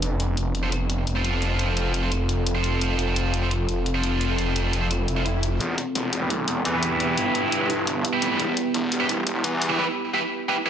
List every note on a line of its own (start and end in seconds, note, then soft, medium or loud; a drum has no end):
0.02 5.59 F1 medium
0.02 5.56 C4 medium
0.02 5.57 F4 medium
0.02 5.56 A4 medium
0.02 closed hi-hat medium
0.20 closed hi-hat medium
0.37 closed hi-hat medium
0.55 closed hi-hat medium
0.63 0.68 F4 medium
0.63 0.68 A4 medium
0.63 0.68 C5 medium
0.72 closed hi-hat medium
0.90 closed hi-hat medium
1.07 closed hi-hat medium
1.15 2.01 F4 medium
1.15 2.01 A4 medium
1.15 2.01 C5 loud
1.24 closed hi-hat medium
1.42 closed hi-hat medium
1.59 closed hi-hat medium
1.77 closed hi-hat medium
1.94 closed hi-hat medium
2.03 2.07 F4 medium
2.03 2.07 A4 medium
2.03 2.07 C5 medium
2.12 closed hi-hat medium
2.29 closed hi-hat medium
2.47 closed hi-hat medium
2.55 3.40 F4 medium
2.55 3.40 A4 medium
2.55 3.40 C5 loud
2.64 closed hi-hat medium
2.81 closed hi-hat medium
2.99 closed hi-hat medium
3.16 closed hi-hat medium
3.34 closed hi-hat medium
3.42 3.47 F4 medium
3.42 3.47 A4 medium
3.42 3.47 C5 medium
3.51 closed hi-hat medium
3.69 closed hi-hat loud
3.86 closed hi-hat medium
3.95 4.80 F4 medium
3.95 4.80 A4 medium
3.95 4.80 C5 loud
4.04 closed hi-hat medium
4.21 closed hi-hat medium
4.38 closed hi-hat medium
4.56 closed hi-hat medium
4.73 closed hi-hat medium
4.82 4.86 F4 medium
4.82 4.86 A4 medium
4.82 4.86 C5 medium
4.91 closed hi-hat medium
4.91 swell medium
5.08 closed hi-hat loud
5.17 5.21 F4 medium
5.17 5.21 A4 medium
5.17 5.21 C5 medium
5.26 closed hi-hat medium
5.43 closed hi-hat loud
5.60 5.76 E1 loud
5.60 9.75 B3 medium
5.60 9.75 E4 medium
5.60 9.75 G4 medium
5.60 closed hi-hat medium
5.78 closed hi-hat medium
5.95 6.46 E1 loud
5.95 closed hi-hat medium
6.13 closed hi-hat medium
6.21 6.26 E4 medium
6.21 6.26 G4 medium
6.21 6.26 B4 medium
6.30 closed hi-hat medium
6.48 6.64 E1 medium
6.48 closed hi-hat loud
6.65 7.16 E2 loud
6.65 closed hi-hat medium
6.74 7.59 E4 medium
6.74 7.59 G4 medium
6.74 7.59 B4 loud
6.83 closed hi-hat loud
7.00 closed hi-hat medium
7.17 8.03 G1 loud
7.17 closed hi-hat medium
7.35 closed hi-hat medium
7.52 closed hi-hat medium
7.61 7.66 E4 medium
7.61 7.65 G4 medium
7.61 7.65 B4 medium
7.70 closed hi-hat medium
7.87 closed hi-hat medium
8.05 closed hi-hat medium
8.13 8.40 E4 loud
8.13 8.40 G4 medium
8.13 8.40 B4 loud
8.22 8.38 F1 loud
8.22 closed hi-hat medium
8.39 8.56 E1 medium
8.39 closed hi-hat medium
8.57 closed hi-hat medium
8.74 9.25 E1 loud
8.74 closed hi-hat medium
8.92 open hi-hat medium
9.00 9.05 E4 medium
9.00 9.05 G4 medium
9.00 9.05 B4 medium
9.09 closed hi-hat medium
9.27 9.43 E1 loud
9.27 closed hi-hat medium
9.44 9.79 E2 loud
9.44 closed hi-hat medium
9.62 open hi-hat medium
9.70 9.75 E4 medium
9.70 9.75 G4 medium
9.70 9.75 B4 medium
9.79 9.84 E4 medium
9.79 9.84 G4 medium
9.79 9.84 B4 medium
10.14 10.18 E4 medium
10.14 10.18 G4 medium
10.14 10.18 B4 medium
10.49 10.53 E4 medium
10.49 10.53 G4 medium
10.49 10.53 B4 medium
10.66 10.70 E4 medium
10.66 10.70 B4 medium